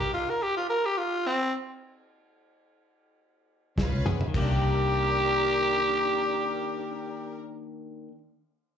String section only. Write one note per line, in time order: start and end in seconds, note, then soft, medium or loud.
0.00 0.27 D4 medium
0.00 0.27 D#4 medium
0.00 0.28 A#4 medium
3.78 4.23 C#4 medium
3.78 4.24 F4 medium
3.78 4.25 B4 loud
4.36 7.38 D4 medium
4.36 7.38 A#4 loud